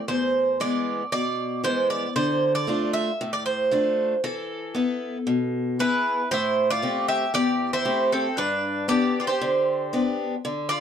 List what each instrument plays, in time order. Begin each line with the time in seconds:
0.08 steel-string acoustic guitar E2, bouzouki C5
0.60 steel-string acoustic guitar E3 G#3 B3, bouzouki D5
1.12 steel-string acoustic guitar B2, bouzouki D5
1.64 steel-string acoustic guitar E3 G#3 B3, bouzouki C5
1.90 bouzouki D5
2.16 steel-string acoustic guitar D3, bouzouki C5
2.55 bouzouki D5
2.67 steel-string acoustic guitar A3 D4 F4
2.93 bouzouki E5
3.21 steel-string acoustic guitar A2
3.33 bouzouki D5
3.46 bouzouki C5
3.71 steel-string acoustic guitar A3 D4 F4
4.24 steel-string acoustic guitar E3, bouzouki A4
4.75 steel-string acoustic guitar B3 E4 B4
5.27 steel-string acoustic guitar B2
5.79 steel-string acoustic guitar B3 E4 G#4, mandolin E4, bouzouki B4
6.31 steel-string acoustic guitar A2, mandolin E4, bouzouki C5
6.70 mandolin F4, bouzouki D5
6.82 steel-string acoustic guitar A3 C4 G4
7.08 mandolin G4, bouzouki E5
7.34 steel-string acoustic guitar E2, mandolin G4, bouzouki D5
7.73 mandolin E4, bouzouki C5
7.85 steel-string acoustic guitar A3 C4 G4
8.12 mandolin C4, bouzouki A4
8.37 steel-string acoustic guitar G2, mandolin D4, bouzouki B4
8.88 steel-string acoustic guitar B3 D4 G4, mandolin G4, bouzouki D5
9.20 mandolin F4, bouzouki D5
9.27 mandolin G4, bouzouki C5
9.41 steel-string acoustic guitar D3
9.93 steel-string acoustic guitar B3 D4 G4
10.45 steel-string acoustic guitar D3
10.69 mandolin F4, bouzouki D5